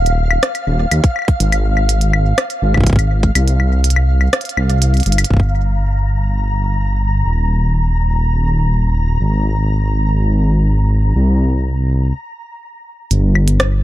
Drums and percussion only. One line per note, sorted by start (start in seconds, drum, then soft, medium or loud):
0.06 closed hi-hat soft
0.31 claves medium
0.43 cross-stick loud
0.43 closed hi-hat medium
0.55 closed hi-hat soft
0.55 claves medium
0.91 closed hi-hat medium
0.91 claves medium
1.04 kick loud
1.04 closed hi-hat soft
1.16 claves soft
1.19 claves soft
1.22 claves soft
1.28 kick medium
1.28 closed hi-hat soft
1.40 closed hi-hat medium
1.52 closed hi-hat medium
1.52 claves medium
1.77 claves soft
1.89 closed hi-hat medium
2.01 closed hi-hat medium
2.13 claves medium
2.38 cross-stick loud
2.38 closed hi-hat medium
2.38 claves medium
2.50 closed hi-hat soft
2.74 kick soft
2.74 claves medium
2.77 kick medium
2.81 kick medium
2.84 kick medium
2.84 closed hi-hat medium
2.87 kick medium
2.90 kick medium
2.93 kick medium
2.96 kick loud
2.96 closed hi-hat soft
2.96 claves medium
3.23 kick medium
3.23 closed hi-hat soft
3.35 closed hi-hat medium
3.35 claves medium
3.48 closed hi-hat medium
3.60 claves medium
3.84 closed hi-hat medium
3.90 closed hi-hat medium
3.96 claves medium
4.21 claves medium
4.33 cross-stick loud
4.33 closed hi-hat medium
4.41 closed hi-hat medium
4.45 closed hi-hat medium
4.49 closed hi-hat medium
4.57 claves medium
4.70 closed hi-hat soft
4.82 closed hi-hat medium
4.94 closed hi-hat soft
4.97 closed hi-hat soft
5.00 closed hi-hat soft
5.03 closed hi-hat soft
5.06 closed hi-hat medium
5.12 closed hi-hat medium
5.18 closed hi-hat medium
5.18 claves medium
5.24 closed hi-hat medium
5.30 kick medium
5.34 kick medium
5.37 kick medium
5.40 kick medium
13.11 closed hi-hat medium
13.35 claves medium
13.48 closed hi-hat medium
13.60 cross-stick loud
13.60 closed hi-hat medium